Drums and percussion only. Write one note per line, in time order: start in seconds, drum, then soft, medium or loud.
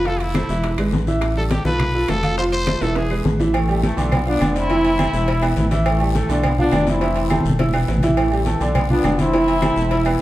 0.05 high bongo medium
0.05 high conga soft
0.05 long guiro medium
0.20 high bongo soft
0.20 high conga soft
0.20 high timbale medium
0.34 high bongo medium
0.34 high conga loud
0.34 high timbale medium
0.34 short guiro medium
0.34 claves medium
0.49 high bongo soft
0.49 high conga soft
0.49 short guiro medium
0.64 high bongo medium
0.64 high conga soft
0.64 high timbale medium
0.64 long guiro medium
0.78 high bongo soft
0.78 high conga soft
0.78 high timbale medium
0.78 claves medium
0.93 high bongo soft
0.93 low bongo medium
0.93 high conga medium
0.93 short guiro medium
1.07 high conga medium
1.07 short guiro medium
1.21 high bongo medium
1.21 high conga soft
1.21 high timbale medium
1.21 long guiro medium
1.21 claves medium
1.36 high bongo soft
1.36 high conga soft
1.50 high bongo medium
1.50 high conga loud
1.50 high timbale medium
1.50 short guiro medium
1.65 high bongo soft
1.65 high conga loud
1.65 short guiro medium
1.79 high bongo medium
1.79 high conga soft
1.79 low conga medium
1.79 high timbale medium
1.79 long guiro medium
1.79 claves medium
1.94 high bongo soft
2.08 high bongo soft
2.08 low bongo medium
2.08 high conga medium
2.08 high timbale medium
2.08 low timbale medium
2.08 short guiro medium
2.08 claves medium
2.23 high conga medium
2.23 high timbale medium
2.23 short guiro medium
2.38 high bongo medium
2.38 high conga soft
2.38 long guiro medium
2.52 high bongo soft
2.52 high conga soft
2.52 high timbale medium
2.67 high bongo medium
2.67 high conga loud
2.67 high timbale loud
2.67 short guiro medium
2.67 claves medium
2.81 high bongo soft
2.81 high timbale medium
2.81 short guiro medium
2.95 high bongo medium
2.95 high conga soft
2.95 high timbale medium
2.95 long guiro medium
3.11 high bongo soft
3.11 high conga soft
3.11 claves medium
3.25 high bongo soft
3.25 low bongo medium
3.25 high conga medium
3.25 short guiro medium
3.40 high conga medium
3.40 low timbale medium
3.40 short guiro medium
3.54 cowbell loud
3.54 high conga soft
3.54 low agogo loud
3.54 long guiro medium
3.54 claves medium
3.69 high conga soft
3.69 low agogo medium
3.83 cowbell medium
3.83 high conga medium
3.83 short guiro medium
3.97 high conga soft
3.97 low agogo medium
3.97 short guiro medium
4.12 cowbell loud
4.12 high conga soft
4.12 low conga medium
4.12 low agogo loud
4.12 long guiro medium
4.12 claves medium
4.27 high conga soft
4.41 cowbell medium
4.41 high conga medium
4.41 low agogo loud
4.41 short guiro medium
4.41 claves medium
4.56 cowbell medium
4.56 short guiro medium
4.70 cowbell loud
4.70 high conga soft
4.70 low agogo medium
4.70 long guiro medium
4.85 cowbell medium
4.85 high conga soft
4.85 low agogo medium
4.99 cowbell medium
4.99 high conga loud
4.99 low agogo loud
4.99 short guiro medium
4.99 claves medium
5.14 high conga soft
5.14 short guiro medium
5.28 cowbell loud
5.28 high conga soft
5.28 low agogo medium
5.28 long guiro medium
5.42 cowbell medium
5.42 high conga soft
5.42 low agogo loud
5.42 claves medium
5.56 cowbell medium
5.56 high conga medium
5.56 short guiro medium
5.71 cowbell medium
5.71 high conga medium
5.71 low agogo medium
5.71 short guiro medium
5.86 cowbell loud
5.86 high conga soft
5.86 low agogo loud
5.86 long guiro medium
5.86 claves medium
6.00 high conga soft
6.00 low agogo medium
6.15 cowbell medium
6.15 high conga medium
6.15 short guiro medium
6.29 high conga soft
6.29 low agogo medium
6.29 short guiro medium
6.43 cowbell loud
6.43 high conga soft
6.43 low conga medium
6.43 low agogo loud
6.43 long guiro medium
6.43 claves medium
6.58 high conga soft
6.58 low conga medium
6.72 cowbell medium
6.72 high conga medium
6.72 low timbale medium
6.72 low agogo loud
6.72 short guiro medium
6.72 claves medium
6.87 cowbell medium
6.87 high conga medium
6.87 short guiro medium
7.01 cowbell loud
7.01 high conga soft
7.01 low agogo medium
7.01 long guiro medium
7.16 cowbell medium
7.16 high conga soft
7.16 low agogo medium
7.30 cowbell medium
7.30 high conga loud
7.30 low agogo loud
7.30 short guiro medium
7.30 claves medium
7.40 high conga medium
7.45 short guiro medium
7.50 high conga loud
7.59 cowbell loud
7.59 high conga medium
7.59 low agogo medium
7.59 long guiro medium
7.69 low conga medium
7.73 cowbell medium
7.73 low agogo loud
7.73 claves medium
7.88 cowbell medium
7.88 low timbale medium
7.88 short guiro medium
7.98 low conga medium
8.03 cowbell medium
8.03 low agogo medium
8.03 short guiro medium
8.08 low conga medium
8.17 cowbell loud
8.17 high conga soft
8.17 low agogo loud
8.17 long guiro medium
8.17 claves medium
8.32 high conga soft
8.32 low agogo medium
8.46 cowbell medium
8.46 high conga medium
8.46 short guiro medium
8.61 low agogo medium
8.61 short guiro medium
8.75 cowbell loud
8.75 high conga soft
8.75 low conga medium
8.75 low agogo loud
8.75 long guiro medium
8.75 claves medium
8.90 high conga soft
8.90 low conga medium
9.04 cowbell medium
9.04 high conga medium
9.04 low timbale medium
9.04 low agogo loud
9.04 short guiro medium
9.04 claves medium
9.19 cowbell medium
9.19 high conga medium
9.19 short guiro medium
9.33 cowbell loud
9.33 high conga soft
9.33 low agogo medium
9.33 long guiro medium
9.48 cowbell medium
9.48 high conga soft
9.48 low agogo medium
9.62 cowbell medium
9.62 high conga loud
9.62 low agogo loud
9.62 short guiro medium
9.62 claves medium
9.76 high conga soft
9.76 short guiro medium
9.91 cowbell loud
9.91 high conga soft
9.91 low agogo medium
9.91 long guiro medium
10.06 cowbell medium
10.06 high conga soft
10.06 low agogo loud
10.06 claves medium